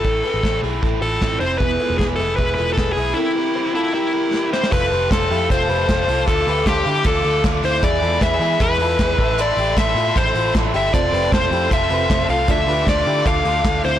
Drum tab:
CC |----------------|----------------|----------------|x---------------|
RD |----------------|----------------|----------------|----x---x---x---|
HH |x-o-x-o-x-o---o-|x-o-x-o-x-o-x-o-|----------------|--o-p-o-p-o-p-o-|
SD |----o-------o---|----o-------o---|------------o-oo|----o-------o---|
BD |o---o---o---o---|o---o---o---o---|----------------|o---o---o---o---|

CC |----------------|----------------|----------------|----------------|
RD |x---x---x---x---|x---x---x---x---|x---x---x---x---|x---x---x---x---|
HH |p-o-p-o-p-o-p-o-|p-o-p-o-p-o-p-o-|p-o-p-o-p-o-p-o-|p-o-p-o-p-o-p-o-|
SD |----o-------o---|----o-------o---|----o-------o---|----o-------o---|
BD |o---o---o---o---|o---o---o---o-o-|----o---o---o---|o---o---o---o---|

CC |----------------|
RD |x---x---x---x---|
HH |p-o-p-o-p-o-p-o-|
SD |----o-------o---|
BD |o---o---o---o---|